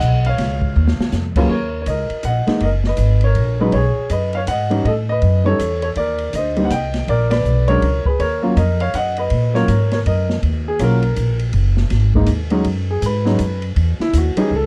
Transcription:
Already playing: grand piano D#5 F#5
0.00 upright bass B1, hi-hat pedal
0.25 grand piano F5, ride
0.29 grand piano C#5
0.38 upright bass C#2, kick, snare, ride
0.62 kick
0.76 upright bass D#2
0.88 snare
0.99 muted upright bass stroke, snare
1.12 upright bass F2, snare, hi-hat pedal
1.36 grand piano D#2 F#3 A#3 C#4 F4 B4, kick, crash
1.40 grand piano G#4
1.49 upright bass D#2, grand piano A#4 C#5
1.82 grand piano C#5
1.86 upright bass C#2, grand piano A#4 D#5, kick, hi-hat pedal, ride
2.10 muted upright bass stroke, ride
2.23 upright bass A#1, grand piano F#5, kick, hi-hat pedal, ride
2.28 grand piano D#5
2.47 grand piano E3 G#3 A#3 D#4, muted upright bass stroke, snare, ride
2.60 upright bass F#1, grand piano D#5, kick, ride
2.65 grand piano A#4
2.84 grand piano D#5, snare
2.89 grand piano B4
2.97 upright bass G#1, kick, hi-hat pedal, ride
3.21 grand piano C#5, ride
3.26 grand piano A#4
3.35 upright bass A#1, kick, ride
3.60 grand piano F#3 G#3 C#4 D#4 G#4 B4
3.72 upright bass B1, grand piano G#4 C#5, kick, ride
3.97 muted upright bass stroke
4.10 upright bass F#2, grand piano B4 D#5, kick, hi-hat pedal, ride
4.33 grand piano F5, ride
4.37 grand piano C#5
4.47 upright bass G#2, grand piano D#5 F#5, kick, hi-hat pedal, ride
4.70 grand piano E3 G3 C#4 D#4, ride
4.84 upright bass A2, grand piano A4 D#5, kick, ride
5.09 grand piano B4 D#5
5.22 upright bass F#2, kick, ride
5.44 grand piano E3 G3 C#4 D#4 A4 C#5
5.59 upright bass E2, kick, hi-hat pedal, ride
5.82 grand piano A4 C#5, ride
5.96 upright bass D#2, grand piano A#4 D5, kick, ride
6.18 ride
6.33 upright bass D2, grand piano D#5, kick, hi-hat pedal, ride
6.37 grand piano C5
6.56 grand piano G3 A#3 C4 D#4, ride
6.65 grand piano F#5
6.70 upright bass C2, grand piano D#5 G5, kick, hi-hat pedal, ride
6.94 snare, ride
7.08 upright bass A#1, grand piano A#4 D5, kick, ride
7.30 grand piano B4 D5, snare, ride
7.44 upright bass B1, hi-hat pedal
7.68 grand piano F#3 G#3 C#4 D4 A#4 C#5, ride
7.82 upright bass C#2, kick, ride
8.06 grand piano G#4 B4, kick
8.19 upright bass D#2, grand piano A#4 C#5, ride
8.42 grand piano F#3 A#3 C#4 F4
8.56 upright bass F2, grand piano A#4 D#5, kick, hi-hat pedal, ride
8.80 grand piano C#5 F5, ride
8.94 upright bass F#2, grand piano D#5 F#5, kick, hi-hat pedal, ride
9.17 grand piano B4 D#5, ride
9.30 upright bass A#2, kick, ride
9.54 grand piano F#3 A#3 C#4 F4 A#4 C#5, snare
9.68 upright bass G#2, kick, hi-hat pedal, ride
9.91 grand piano A#4 C#5, snare, ride
10.06 upright bass F#2, grand piano A#4 D#5, kick, ride
10.29 snare
10.43 upright bass D#2, kick, ride
10.68 grand piano G#4
10.79 upright bass B1, grand piano F#3 A#3 C#4 F4, kick, hi-hat pedal, ride
10.83 grand piano A#4
11.03 ride
11.16 upright bass A#1, kick, hi-hat pedal, ride
11.39 ride
11.53 upright bass F#1, kick, ride
11.77 snare
11.90 upright bass G#1, kick, snare, ride
12.14 grand piano E3 G#3 A#3 D#4, kick
12.26 upright bass D#2, hi-hat pedal, ride
12.50 grand piano F#3 G#3 C#4 D#4, ride
12.64 upright bass F#2, kick, ride
12.91 grand piano G#4
13.02 upright bass G#2, kick, hi-hat pedal, ride
13.06 grand piano B4
13.25 grand piano F#3 G#3 C#4 D#4, snare
13.39 upright bass F#2, kick, hi-hat pedal, ride
13.62 ride
13.76 upright bass E2, kick, ride
13.99 grand piano E4, muted upright bass stroke, snare
14.13 upright bass D#2, kick, hi-hat pedal, ride
14.18 grand piano F#4
14.36 grand piano E3 G3 C#4 D#4, muted upright bass stroke, ride
14.40 grand piano G#4
14.51 upright bass C#2, kick
14.56 grand piano A4

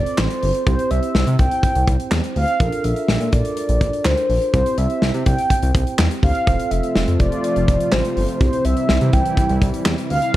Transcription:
Already playing: synth keys C4 F4 A4 C5, soft synth lead D5
0.06 closed hi-hat
0.18 analog synth bass A1, soft synth lead C5, snare, clap
0.30 closed hi-hat
0.43 analog synth bass G1, open hi-hat
0.55 closed hi-hat
0.66 analog synth bass C2, synth keys C4 E4 G4 C5, soft synth lead C5, kick, closed hi-hat
0.79 closed hi-hat
0.91 analog synth bass C2, soft synth lead E5, closed hi-hat
1.03 closed hi-hat
1.15 analog synth bass C2, snare
1.27 analog synth bass C3, closed hi-hat
1.39 analog synth bass C2, soft synth lead G5, kick, closed hi-hat
1.51 closed hi-hat
1.63 kick, closed hi-hat
1.75 analog synth bass C2, closed hi-hat
1.88 analog synth bass C2, kick, closed hi-hat
2.00 closed hi-hat
2.11 analog synth bass E2, snare, clap
2.24 closed hi-hat
2.36 analog synth bass D2, soft synth lead F5, open hi-hat
2.48 closed hi-hat
2.60 analog synth bass A#1, synth keys D4 F4 A4 A#4, kick, closed hi-hat
2.72 closed hi-hat
2.84 analog synth bass A#1, soft synth lead E5, closed hi-hat
2.96 closed hi-hat
3.08 analog synth bass A#1, snare
3.21 analog synth bass A#2, closed hi-hat
3.33 analog synth bass A#1, soft synth lead D5, kick, closed hi-hat
3.45 closed hi-hat
3.57 closed hi-hat
3.69 analog synth bass A#1, closed hi-hat
3.81 analog synth bass A#1, kick, closed hi-hat
3.93 closed hi-hat
4.05 analog synth bass D2, soft synth lead C5, snare, clap
4.17 closed hi-hat
4.29 analog synth bass A#1, open hi-hat
4.42 closed hi-hat
4.54 analog synth bass C2, synth keys C4 E4 G4 C5, soft synth lead C5, kick, closed hi-hat
4.66 closed hi-hat
4.78 analog synth bass C2, soft synth lead E5, closed hi-hat
4.90 closed hi-hat
5.02 analog synth bass C2, snare
5.14 analog synth bass C3, closed hi-hat
5.26 analog synth bass C2, soft synth lead G5, kick, closed hi-hat
5.38 closed hi-hat
5.50 kick, closed hi-hat
5.62 analog synth bass C2, closed hi-hat
5.75 analog synth bass C2, kick, closed hi-hat
5.87 closed hi-hat
5.99 analog synth bass E2, snare, clap
6.11 closed hi-hat
6.23 analog synth bass D2, synth keys C4 E4 G4 C5, soft synth lead F5, kick, open hi-hat
6.35 closed hi-hat
6.47 analog synth bass F1, analog synth pad C3 F3 A3 F4, synth keys C4 F4 A4 C5, kick, closed hi-hat
6.60 closed hi-hat
6.71 analog synth bass F1, soft synth lead E5, closed hi-hat
6.83 closed hi-hat
6.95 analog synth bass F1, snare
7.08 analog synth bass F2, closed hi-hat
7.20 analog synth bass F1, soft synth lead D5, kick, closed hi-hat
7.32 closed hi-hat
7.44 closed hi-hat
7.56 analog synth bass F1, closed hi-hat
7.68 analog synth bass F1, kick, closed hi-hat
7.80 closed hi-hat
7.92 analog synth bass A1, soft synth lead C5, snare, clap
8.05 closed hi-hat
8.17 analog synth bass G1, open hi-hat
8.28 closed hi-hat
8.41 analog synth bass C2, analog synth pad E3 G3 E4, synth keys C4 E4 G4 C5, soft synth lead C5, kick, closed hi-hat
8.53 closed hi-hat
8.65 analog synth bass C2, soft synth lead E5, closed hi-hat
8.77 closed hi-hat
8.89 analog synth bass C2, snare
9.01 analog synth bass C3, closed hi-hat
9.13 analog synth bass C2, soft synth lead G5, kick, closed hi-hat
9.25 closed hi-hat
9.37 kick, closed hi-hat
9.49 analog synth bass C2, closed hi-hat
9.62 analog synth bass C2, kick, closed hi-hat
9.74 closed hi-hat
9.86 analog synth bass E2, snare, clap
9.98 closed hi-hat
10.10 analog synth bass D2, soft synth lead F5, open hi-hat
10.22 closed hi-hat

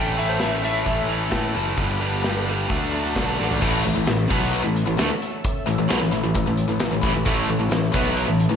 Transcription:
Already playing: picked electric bass A1, distorted electric guitar A2 E3 A3 C#4 A4, string machine C#4 A4 E5, electric slide guitar G5
0.16 distorted electric guitar A2 E3 A3 C#4 A4, electric slide guitar E5
0.29 electric slide guitar C5
0.39 distorted electric guitar A2 E3 A3 C#4 A4, electric slide guitar E5, snare, closed hi-hat
0.63 distorted electric guitar A2 E3 A3 C#4 A4, electric slide guitar E5
0.84 picked electric bass A1, distorted electric guitar A2 E3 A3 C#4 A4, kick, closed hi-hat
1.08 distorted electric guitar A2 E3 A3 C#4 A4
1.30 distorted electric guitar A2 E3 A3 C#4 A4, picked electric bass A2, kick, snare, closed hi-hat
1.54 picked electric bass F#1, distorted electric guitar A2 E3 A3 C#4 A4
1.77 picked electric bass G1, distorted electric guitar G2 D3 G3 B3 D4 G4, string machine B3 A4 G5, kick, closed hi-hat
1.99 distorted electric guitar G2 D3 G3 B3 D4 G4
2.22 distorted electric guitar G2 D3 G3 B3 D4 G4, snare, closed hi-hat
2.44 distorted electric guitar G2 D3 G3 B3 D4 G4
2.68 picked electric bass D2, distorted electric guitar D3 F#3 A3 D4 F#4, string machine D4 A4 F#5, kick, closed hi-hat
2.91 distorted electric guitar D3 F#3 A3 D4 F#4
3.15 picked electric bass B1, distorted electric guitar D3 F#3 A3 D4 F#4, kick, snare, closed hi-hat
3.38 picked electric bass A1, distorted electric guitar D3 F#3 A3 D4 F#4, snare
3.51 floor tom
3.61 picked electric bass A1, distorted electric guitar A2 E3 A3, string machine C#4 A4 E5, kick, crash, shaker
3.85 picked electric bass A1, distorted electric guitar A2 E3, closed hi-hat, shaker
3.94 picked electric bass A1, distorted electric guitar A2 E3, shaker
4.07 picked electric bass A1, distorted electric guitar A2 E3, snare, closed hi-hat, shaker
4.20 closed hi-hat, shaker
4.30 picked electric bass B1, distorted electric guitar B2 F#3 B3, kick, closed hi-hat, shaker
4.42 closed hi-hat
4.53 closed hi-hat, shaker
4.63 picked electric bass A1, distorted electric guitar A2 E3
4.76 closed hi-hat, shaker
4.86 picked electric bass A1, distorted electric guitar A2 E3, closed hi-hat
4.97 picked electric bass D2, distorted electric guitar D3 A3, snare, closed hi-hat, shaker
5.21 closed hi-hat, shaker
5.44 kick, closed hi-hat, shaker
5.66 picked electric bass A1, distorted electric guitar A2 E3, closed hi-hat, shaker
5.78 picked electric bass A1, distorted electric guitar A2 E3, shaker
5.89 picked electric bass B1, distorted electric guitar B2 F#3, snare, closed hi-hat, shaker
6.00 picked electric bass A1, distorted electric guitar A2 E3, closed hi-hat, shaker
6.11 picked electric bass A1, distorted electric guitar A2 E3, closed hi-hat, shaker
6.24 picked electric bass A1, distorted electric guitar A2 E3, closed hi-hat
6.35 picked electric bass A1, distorted electric guitar A2 E3, kick, closed hi-hat, shaker
6.46 picked electric bass A1, distorted electric guitar A2 E3, shaker
6.57 closed hi-hat, shaker
6.68 picked electric bass A1, distorted electric guitar A2 E3
6.79 picked electric bass A1, distorted electric guitar A2 E3, snare, closed hi-hat, shaker
6.91 picked electric bass A1, distorted electric guitar A2 E3
7.02 picked electric bass A1, distorted electric guitar A2 E3, kick, closed hi-hat, shaker
7.13 picked electric bass A1, distorted electric guitar A2 E3, closed hi-hat
7.25 picked electric bass A1, distorted electric guitar A2 E3 A3, string machine A4 C#5 E5, kick, closed hi-hat, shaker
7.47 picked electric bass A1, distorted electric guitar A2 E3, closed hi-hat, shaker
7.59 picked electric bass A1, distorted electric guitar A2 E3, shaker
7.69 picked electric bass A1, distorted electric guitar A2 E3, snare, closed hi-hat, shaker
7.83 closed hi-hat, shaker
7.92 picked electric bass B1, distorted electric guitar B2 F#3 B3, kick, closed hi-hat, shaker
8.05 snare, closed hi-hat
8.16 closed hi-hat, shaker
8.26 picked electric bass A1, distorted electric guitar A2 E3, shaker
8.39 closed hi-hat, shaker
8.49 picked electric bass A1, distorted electric guitar A2 E3, closed hi-hat

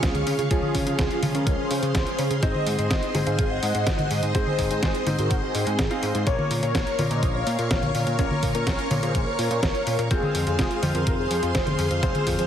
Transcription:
Already playing: grand piano F3 G#3 C#4 G#4, string machine C#4 G#4 F5 C#6, analog polysynth F4 G#4
0.03 analog synth bass C#2, kick, snare, closed hi-hat
0.15 closed hi-hat, high conga
0.27 analog synth bass C#3, open hi-hat
0.39 analog synth bass C#3, closed hi-hat
0.51 analog synth bass C#2, grand piano F3 G#3 C#4 G#4, analog polysynth F4 G#4, string machine C6, kick, closed hi-hat
0.63 high conga
0.75 analog synth bass C#3, kick, open hi-hat
0.87 analog synth bass C#3, analog polysynth F4 G#4, closed hi-hat
0.99 analog synth bass C#2, kick, snare, closed hi-hat
1.11 closed hi-hat
1.23 analog synth bass C#3, grand piano F3 G#3 C#4 G#4, open hi-hat, high conga
1.35 analog synth bass C#3, analog polysynth C#4 A#4, closed hi-hat
1.47 analog synth bass C#2, kick, closed hi-hat
1.59 analog polysynth G#4 C5
1.71 analog synth bass C#3, open hi-hat
1.83 analog synth bass C#3, closed hi-hat
1.95 analog synth bass C#2, kick, snare, closed hi-hat
2.07 closed hi-hat
2.19 analog synth bass C#3, open hi-hat
2.31 analog synth bass C#3, closed hi-hat
2.43 analog synth bass G#1, grand piano G#3 C4 D#4 C5, analog polysynth C5 D#5, string machine C5 D#5, kick, closed hi-hat
2.55 high conga
2.67 analog synth bass G#2, open hi-hat
2.79 analog synth bass G#2, analog polysynth C5 D#5, closed hi-hat
2.91 analog synth bass G#1, kick, snare, closed hi-hat
3.03 closed hi-hat
3.15 analog synth bass G#2, grand piano G#3 C4 D#4 C5, open hi-hat, high conga
3.27 analog synth bass G#2, analog polysynth G#4 F5, closed hi-hat
3.39 analog synth bass G#1, kick, closed hi-hat
3.51 analog polysynth D#5 F#5
3.63 analog synth bass G#2, open hi-hat
3.75 analog synth bass G#2, closed hi-hat
3.87 analog synth bass G#1, kick, snare, closed hi-hat
3.99 closed hi-hat, high conga
4.11 analog synth bass G#2, open hi-hat
4.23 analog synth bass G#2, closed hi-hat
4.35 analog synth bass G#1, grand piano G#3 C4 D#4 C5, analog polysynth G#4 C5, kick, closed hi-hat
4.47 high conga
4.59 analog synth bass G#2, kick, open hi-hat
4.71 analog synth bass G#2, analog polysynth G#4 C5, closed hi-hat
4.83 analog synth bass G#1, kick, snare, closed hi-hat
4.95 closed hi-hat
5.07 analog synth bass G#2, grand piano G#3 C4 D#4 C5, open hi-hat, high conga
5.19 analog synth bass G#2, analog polysynth F#4 A#4, closed hi-hat
5.31 analog synth bass G#1, kick, closed hi-hat
5.43 analog polysynth C4 G#4
5.55 analog synth bass G#2, open hi-hat
5.67 analog synth bass G#2, closed hi-hat
5.79 analog synth bass G#1, kick, snare, closed hi-hat
5.91 grand piano G#3 C4 D#4 F5, closed hi-hat
6.03 analog synth bass G#2, open hi-hat
6.15 analog synth bass G#2, closed hi-hat
6.27 analog synth bass A#1, grand piano A#3 C#4 F4 C#5, string machine A#4 C#5 F5 C#6, analog polysynth A#4 C#5, kick, closed hi-hat
6.39 high conga
6.51 analog synth bass A#2, open hi-hat
6.63 analog synth bass A#2, analog polysynth A#4 C#5, closed hi-hat
6.75 analog synth bass A#1, kick, snare, closed hi-hat
6.87 closed hi-hat
6.99 analog synth bass A#2, grand piano A#3 C#4 F4 C#5, open hi-hat, high conga
7.11 analog synth bass A#2, analog polysynth C5 D#5, closed hi-hat
7.23 analog synth bass A#1, kick, closed hi-hat
7.35 analog polysynth C#5 F5
7.47 analog synth bass A#2, open hi-hat
7.59 analog synth bass A#2, closed hi-hat
7.71 analog synth bass A#1, kick, snare, closed hi-hat
7.83 closed hi-hat, high conga
7.95 analog synth bass A#2, open hi-hat
8.07 analog synth bass A#2, closed hi-hat
8.19 analog synth bass A#1, grand piano A#3 C#4 F4 C#5, analog polysynth C#4 A#4, kick, closed hi-hat
8.31 high conga
8.43 analog synth bass A#2, kick, open hi-hat
8.55 analog synth bass A#2, analog polysynth C#4 A#4, closed hi-hat
8.67 analog synth bass A#1, kick, snare, closed hi-hat
8.79 closed hi-hat
8.91 analog synth bass A#2, grand piano A#3 C#4 F4 C#5, open hi-hat, high conga
9.03 analog synth bass A#2, analog polysynth G#4 C5, closed hi-hat
9.15 analog synth bass A#1, kick, closed hi-hat
9.27 analog polysynth A#4 C#5
9.39 analog synth bass A#2, open hi-hat
9.51 analog synth bass A#2, closed hi-hat
9.63 analog synth bass A#1, kick, snare, closed hi-hat
9.75 closed hi-hat
9.87 analog synth bass A#2, open hi-hat
9.99 analog synth bass A#2, closed hi-hat
10.11 analog synth bass F1, grand piano G#3 C4 F4 C5, analog polysynth F4 G#4, string machine G#4 C5 C6, kick, closed hi-hat
10.23 high conga
10.35 analog synth bass F2, open hi-hat
10.47 analog synth bass F2, analog polysynth F4 G#4, closed hi-hat
10.59 analog synth bass F1, kick, snare, closed hi-hat
10.71 closed hi-hat
10.83 analog synth bass F2, grand piano G#3 C4 F4 C5, open hi-hat, high conga
10.95 analog synth bass F2, analog polysynth F4 A#4, closed hi-hat
11.07 analog synth bass F1, kick, closed hi-hat
11.19 analog polysynth G#4 C5
11.31 analog synth bass F2, open hi-hat
11.43 analog synth bass F2, closed hi-hat
11.55 analog synth bass F1, kick, snare, closed hi-hat
11.67 closed hi-hat, high conga
11.79 analog synth bass F2, open hi-hat
11.91 analog synth bass F2, closed hi-hat
12.03 analog synth bass F1, grand piano G#3 C4 F4 C5, analog polysynth G#4 C5, kick, closed hi-hat
12.15 closed hi-hat, high conga
12.27 analog synth bass F2, kick, open hi-hat
12.39 analog synth bass F2, analog polysynth G#4 C5, closed hi-hat

